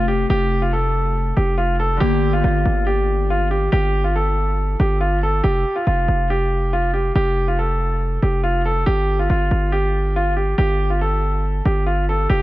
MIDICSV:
0, 0, Header, 1, 4, 480
1, 0, Start_track
1, 0, Key_signature, -1, "major"
1, 0, Tempo, 428571
1, 333, Time_signature, 4, 2, 24, 8
1, 13913, End_track
2, 0, Start_track
2, 0, Title_t, "Grand piano"
2, 0, Program_c, 0, 0
2, 89, Note_on_c, 0, 67, 80
2, 278, Note_off_c, 0, 67, 0
2, 336, Note_on_c, 0, 67, 106
2, 673, Note_off_c, 0, 67, 0
2, 694, Note_on_c, 0, 65, 80
2, 787, Note_off_c, 0, 65, 0
2, 815, Note_on_c, 0, 69, 81
2, 1491, Note_off_c, 0, 69, 0
2, 1529, Note_on_c, 0, 67, 79
2, 1718, Note_off_c, 0, 67, 0
2, 1766, Note_on_c, 0, 65, 82
2, 1956, Note_off_c, 0, 65, 0
2, 2011, Note_on_c, 0, 69, 85
2, 2199, Note_off_c, 0, 69, 0
2, 2244, Note_on_c, 0, 67, 108
2, 2587, Note_off_c, 0, 67, 0
2, 2611, Note_on_c, 0, 65, 83
2, 2705, Note_off_c, 0, 65, 0
2, 2732, Note_on_c, 0, 65, 87
2, 3184, Note_off_c, 0, 65, 0
2, 3210, Note_on_c, 0, 67, 84
2, 3663, Note_off_c, 0, 67, 0
2, 3699, Note_on_c, 0, 65, 86
2, 3884, Note_off_c, 0, 65, 0
2, 3929, Note_on_c, 0, 67, 78
2, 4118, Note_off_c, 0, 67, 0
2, 4168, Note_on_c, 0, 67, 101
2, 4508, Note_off_c, 0, 67, 0
2, 4526, Note_on_c, 0, 65, 74
2, 4623, Note_off_c, 0, 65, 0
2, 4655, Note_on_c, 0, 69, 81
2, 5331, Note_off_c, 0, 69, 0
2, 5378, Note_on_c, 0, 67, 81
2, 5563, Note_off_c, 0, 67, 0
2, 5607, Note_on_c, 0, 65, 82
2, 5797, Note_off_c, 0, 65, 0
2, 5859, Note_on_c, 0, 69, 86
2, 6044, Note_off_c, 0, 69, 0
2, 6088, Note_on_c, 0, 67, 97
2, 6429, Note_off_c, 0, 67, 0
2, 6447, Note_on_c, 0, 65, 78
2, 6543, Note_off_c, 0, 65, 0
2, 6571, Note_on_c, 0, 65, 82
2, 7023, Note_off_c, 0, 65, 0
2, 7058, Note_on_c, 0, 67, 81
2, 7507, Note_off_c, 0, 67, 0
2, 7538, Note_on_c, 0, 65, 85
2, 7724, Note_off_c, 0, 65, 0
2, 7768, Note_on_c, 0, 67, 78
2, 7958, Note_off_c, 0, 67, 0
2, 8014, Note_on_c, 0, 67, 99
2, 8352, Note_off_c, 0, 67, 0
2, 8375, Note_on_c, 0, 65, 77
2, 8468, Note_off_c, 0, 65, 0
2, 8498, Note_on_c, 0, 69, 77
2, 9172, Note_off_c, 0, 69, 0
2, 9211, Note_on_c, 0, 67, 73
2, 9399, Note_off_c, 0, 67, 0
2, 9447, Note_on_c, 0, 65, 79
2, 9637, Note_off_c, 0, 65, 0
2, 9693, Note_on_c, 0, 69, 83
2, 9881, Note_off_c, 0, 69, 0
2, 9927, Note_on_c, 0, 67, 104
2, 10268, Note_off_c, 0, 67, 0
2, 10296, Note_on_c, 0, 65, 79
2, 10389, Note_off_c, 0, 65, 0
2, 10415, Note_on_c, 0, 65, 84
2, 10865, Note_off_c, 0, 65, 0
2, 10890, Note_on_c, 0, 67, 86
2, 11342, Note_off_c, 0, 67, 0
2, 11381, Note_on_c, 0, 65, 84
2, 11565, Note_off_c, 0, 65, 0
2, 11610, Note_on_c, 0, 67, 75
2, 11799, Note_off_c, 0, 67, 0
2, 11849, Note_on_c, 0, 67, 99
2, 12189, Note_off_c, 0, 67, 0
2, 12210, Note_on_c, 0, 65, 70
2, 12305, Note_off_c, 0, 65, 0
2, 12334, Note_on_c, 0, 69, 79
2, 13010, Note_off_c, 0, 69, 0
2, 13058, Note_on_c, 0, 67, 80
2, 13244, Note_off_c, 0, 67, 0
2, 13288, Note_on_c, 0, 65, 78
2, 13478, Note_off_c, 0, 65, 0
2, 13541, Note_on_c, 0, 69, 83
2, 13725, Note_off_c, 0, 69, 0
2, 13771, Note_on_c, 0, 67, 100
2, 13913, Note_off_c, 0, 67, 0
2, 13913, End_track
3, 0, Start_track
3, 0, Title_t, "Harp"
3, 0, Program_c, 1, 46
3, 0, Note_on_c, 1, 48, 74
3, 0, Note_on_c, 1, 57, 66
3, 0, Note_on_c, 1, 65, 81
3, 2204, Note_on_c, 1, 50, 69
3, 2209, Note_off_c, 1, 57, 0
3, 2233, Note_off_c, 1, 65, 0
3, 2251, Note_on_c, 1, 58, 68
3, 2299, Note_on_c, 1, 67, 79
3, 2309, Note_off_c, 1, 48, 0
3, 6047, Note_off_c, 1, 58, 0
3, 6071, Note_off_c, 1, 67, 0
3, 6149, Note_off_c, 1, 50, 0
3, 13913, End_track
4, 0, Start_track
4, 0, Title_t, "808-style bass"
4, 0, Program_c, 2, 38
4, 0, Note_on_c, 2, 29, 109
4, 289, Note_off_c, 2, 29, 0
4, 334, Note_on_c, 2, 29, 114
4, 1489, Note_off_c, 2, 29, 0
4, 1534, Note_on_c, 2, 29, 105
4, 2225, Note_off_c, 2, 29, 0
4, 2253, Note_on_c, 2, 31, 116
4, 2714, Note_off_c, 2, 31, 0
4, 2733, Note_on_c, 2, 31, 109
4, 2963, Note_off_c, 2, 31, 0
4, 2973, Note_on_c, 2, 31, 108
4, 4128, Note_off_c, 2, 31, 0
4, 4172, Note_on_c, 2, 31, 115
4, 5328, Note_off_c, 2, 31, 0
4, 5372, Note_on_c, 2, 31, 107
4, 6064, Note_off_c, 2, 31, 0
4, 6093, Note_on_c, 2, 29, 116
4, 6324, Note_off_c, 2, 29, 0
4, 6573, Note_on_c, 2, 29, 106
4, 6803, Note_off_c, 2, 29, 0
4, 6812, Note_on_c, 2, 29, 108
4, 7968, Note_off_c, 2, 29, 0
4, 8013, Note_on_c, 2, 29, 114
4, 9168, Note_off_c, 2, 29, 0
4, 9213, Note_on_c, 2, 29, 107
4, 9904, Note_off_c, 2, 29, 0
4, 9932, Note_on_c, 2, 31, 112
4, 10393, Note_off_c, 2, 31, 0
4, 10413, Note_on_c, 2, 31, 103
4, 10643, Note_off_c, 2, 31, 0
4, 10653, Note_on_c, 2, 31, 104
4, 11808, Note_off_c, 2, 31, 0
4, 11853, Note_on_c, 2, 31, 113
4, 13008, Note_off_c, 2, 31, 0
4, 13053, Note_on_c, 2, 31, 105
4, 13744, Note_off_c, 2, 31, 0
4, 13772, Note_on_c, 2, 29, 111
4, 13913, Note_off_c, 2, 29, 0
4, 13913, End_track
0, 0, End_of_file